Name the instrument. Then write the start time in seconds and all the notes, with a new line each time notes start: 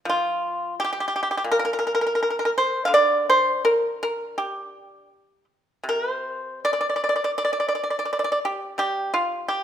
pipa
0.05 F3
0.09 F4
0.80 G4
0.84 G4
0.93 G4
1.00 G4
1.08 G4
1.16 G4
1.23 G4
1.31 G4
1.37 G4
1.44 A#2
1.52 A#4
1.59 A#4
1.65 A#4
1.73 A#4
1.79 A#4
1.87 A#4
1.95 A#4
2.01 A#4
2.07 A#4
2.15 A#4
2.23 A#4
2.30 A#4
2.39 A#4
2.45 A#4
2.58 C5
2.85 D3 F5
2.94 D5
3.30 C5
3.65 A#4
4.03 A#4
4.38 G4
5.84 C3
5.89 A#4
6.10 C5
6.65 D5
6.73 D5
6.81 D5
6.90 D5
6.96 D5
7.04 D5
7.09 D5
7.16 D5
7.24 D5
7.38 D5
7.45 D5
7.53 D5
7.60 D5
7.68 D5
7.75 D5
7.83 D5
7.90 D5
7.99 D5
8.05 D5
8.13 D5
8.19 D5
8.24 D5
8.32 D5
8.45 G4
8.78 G3 G4
9.14 F4
9.48 G4